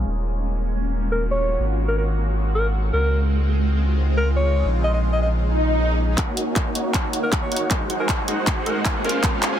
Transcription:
Already playing: ambient pad C#4
0.06 sub bass D#1, ambient pad D#3 A#3 F4 F#4
1.12 alto saxophone A#4
1.31 alto saxophone C#5
1.59 sub bass G#1, ambient pad G#3 C4
1.88 alto saxophone A#4
1.98 alto saxophone A#4
2.55 alto saxophone A#4
2.93 sub bass C#2, ambient pad C#3 D#4 F4, alto saxophone A#4
4.18 alto saxophone A#4
4.36 alto saxophone C#5
4.65 sub bass A#1, ambient pad A#3 C#4
4.84 alto saxophone D#5
4.94 alto saxophone D#5
5.13 alto saxophone D#5
5.22 alto saxophone D#5
5.42 swell
6.18 sub bass D#1, ambient pad D#3 A#3 C#4 F4 F#4, supersaw synth A#3 D#4 F#4 C#5 F#5, kick, clap, closed hi-hat, riser
6.37 closed hi-hat
6.47 sub bass D#1, supersaw synth A#3 D#4 F#4 C#5 G#5
6.56 kick, clap, closed hi-hat
6.75 sub bass D#1, supersaw synth A#3 D#4 F#4 C#5 F#5, closed hi-hat
6.94 kick, clap, closed hi-hat
7.04 sub bass D#1, supersaw synth A#3 D#4 F#4 C#5 F#5
7.13 closed hi-hat
7.23 alto saxophone A#4
7.33 sub bass D#2, supersaw synth A#3 C#5, kick, clap, closed hi-hat
7.42 alto saxophone C#5
7.52 sub bass D#1, supersaw synth A#3 D#4 F#4 C#5 F#5, closed hi-hat
7.56 closed hi-hat
7.71 sub bass G#1, ambient pad G#3 C4, kick, clap, closed hi-hat
7.90 closed hi-hat
8.00 sub bass G#1, supersaw synth G#3 D#4 F#4 C5 G#5, alto saxophone A#4
8.09 alto saxophone A#4, kick, clap, closed hi-hat
8.28 sub bass G#1, supersaw synth G#3 D#4 F#4 C5 F#5, closed hi-hat
8.47 kick, clap, closed hi-hat
8.57 sub bass G#2, supersaw synth G#3 D#4 F#4 C5 F#5
8.66 alto saxophone A#4, closed hi-hat
8.85 sub bass G#1, supersaw synth G#3 D#4, kick, clap, closed hi-hat
9.04 sub bass C#2, ambient pad C#3 D#4 F4, supersaw synth G#3 C#4 F4 C5 F5, alto saxophone A#4, closed hi-hat
9.09 closed hi-hat
9.24 sub bass C#2, kick, clap, closed hi-hat
9.43 clap, closed hi-hat
9.52 sub bass C#2, supersaw synth G#3 C#4 F4 C5 G#5

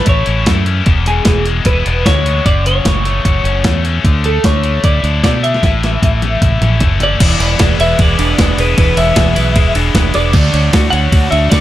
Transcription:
Already playing: distorted electric guitar A2 E3 A3
0.06 fingered electric bass A1, distorted electric guitar E4, clean electric guitar C#5, kick, closed hi-hat
0.26 fingered electric bass A1, distorted electric guitar C#4, closed hi-hat
0.46 fingered electric bass F#2, distorted electric guitar A3, kick, snare, closed hi-hat
0.66 distorted electric guitar C#4, closed hi-hat
0.85 fingered electric bass E1, distorted electric guitar E2, kick, closed hi-hat
1.06 distorted electric guitar B2, clean electric guitar G#4, closed hi-hat
1.25 fingered electric bass E1, distorted electric guitar E3, kick, snare, closed hi-hat
1.46 distorted electric guitar G#3, closed hi-hat
1.65 fingered electric bass E1, distorted electric guitar E4, clean electric guitar B4, kick, closed hi-hat
1.85 fingered electric bass E1, distorted electric guitar B3, closed hi-hat
2.06 fingered electric bass D2, distorted electric guitar G#3, clean electric guitar C#5, kick, snare, closed hi-hat
2.25 distorted electric guitar B3, closed hi-hat
2.45 fingered electric bass F#1, distorted electric guitar F#2, clean electric guitar D5, kick, closed hi-hat
2.65 distorted electric guitar C#3, clean electric guitar C#5, closed hi-hat
2.85 fingered electric bass F#1, distorted electric guitar E3, kick, snare, closed hi-hat
3.05 distorted electric guitar A3, closed hi-hat
3.25 fingered electric bass F#1, distorted electric guitar F#4, kick, closed hi-hat
3.44 fingered electric bass F#1, distorted electric guitar C#4, closed hi-hat
3.64 fingered electric bass E2, distorted electric guitar A3, kick, snare, closed hi-hat
3.85 distorted electric guitar C#4, closed hi-hat
4.04 fingered electric bass D2, distorted electric guitar D3, kick, closed hi-hat
4.24 distorted electric guitar A3, clean electric guitar A4, closed hi-hat
4.44 fingered electric bass D2, distorted electric guitar D3, clean electric guitar C#5, kick, snare, closed hi-hat
4.64 distorted electric guitar A3, closed hi-hat
4.84 fingered electric bass D2, distorted electric guitar E4, clean electric guitar D5, kick, closed hi-hat
5.03 fingered electric bass D2, distorted electric guitar D4, closed hi-hat
5.23 fingered electric bass B2, distorted electric guitar A3, clean electric guitar D5, kick, snare, closed hi-hat
5.43 distorted electric guitar D4, clean electric guitar E5, closed hi-hat
5.54 snare
5.63 fingered electric bass A1, distorted electric guitar A2, kick, snare, closed hi-hat
5.83 distorted electric guitar E3, snare, closed hi-hat
6.02 fingered electric bass A1, distorted electric guitar E3, kick, closed hi-hat, high tom
6.22 distorted electric guitar A3, closed hi-hat, high tom
6.42 fingered electric bass A1, distorted electric guitar E4, kick, closed hi-hat, mid tom
6.61 fingered electric bass A1, distorted electric guitar C#4, closed hi-hat, mid tom
6.80 fingered electric bass F#1, distorted electric guitar A3, kick, closed hi-hat, floor tom
7.00 distorted electric guitar C#4, clean electric guitar D5, closed hi-hat, floor tom
7.20 fingered electric bass E1, distorted electric guitar E2 B2 E3 G#3 B3 E4, overdriven electric guitar E3, kick, crash, ride
7.40 fingered electric bass E1, overdriven electric guitar B4, ride
7.59 fingered electric bass E1, distorted electric guitar E2 B2 E3 G#3 B3 E4, overdriven electric guitar G#4, kick, snare, ride
7.79 fingered electric bass E1, distorted electric guitar E3 G#3 B3 E4, overdriven electric guitar B4, clean electric guitar E5, ride
7.99 fingered electric bass E1, overdriven electric guitar G#4, clean electric guitar D5, kick, ride
8.18 fingered electric bass E1, distorted electric guitar E3 G#3 B3 E4, overdriven electric guitar D4, ride
8.38 fingered electric bass E1, distorted electric guitar E3 G#3 B3 E4, overdriven electric guitar B4, kick, snare, ride
8.57 fingered electric bass E1, overdriven electric guitar G#4, clean electric guitar B4, ride
8.76 fingered electric bass E1, distorted electric guitar E2 B2 E3 G#3 B3 E4, overdriven electric guitar E3, clean electric guitar B4, kick, ride
8.97 fingered electric bass E1, overdriven electric guitar B4, clean electric guitar E5, ride
9.16 fingered electric bass E1, distorted electric guitar E2 B2 E3 G#3 B3 E4, overdriven electric guitar G#4, kick, snare, ride
9.35 fingered electric bass B1, distorted electric guitar E3 G#3 B3 E4, overdriven electric guitar B4, ride
9.55 fingered electric bass E1, overdriven electric guitar G#4, kick, ride
9.74 fingered electric bass E1, distorted electric guitar E3 G#3 B3 E4, overdriven electric guitar D4, ride
9.94 fingered electric bass E1, distorted electric guitar E3 G#3 B3 E4, overdriven electric guitar B4, kick, snare, ride
10.14 fingered electric bass E1, overdriven electric guitar G#4, clean electric guitar D5, ride
10.33 fingered electric bass D2, distorted electric guitar D3 A3 D4 F#4, overdriven electric guitar D3, kick, crash
10.54 fingered electric bass D2, overdriven electric guitar C#5, ride
10.72 fingered electric bass D2, distorted electric guitar D3 A3 D4 F#4, overdriven electric guitar F#4, kick, snare, ride
10.90 fingered electric bass D2, distorted electric guitar A3 D4 F#4, overdriven electric guitar C#5, clean electric guitar F#5, ride
11.12 fingered electric bass D2, overdriven electric guitar F#4, kick, ride
11.30 fingered electric bass D2, distorted electric guitar A3 D4 F#4, overdriven electric guitar D4, clean electric guitar E5, ride
11.50 fingered electric bass D2, distorted electric guitar D3 A3 D4 F#4, overdriven electric guitar C#5, clean electric guitar D5, kick, snare, ride

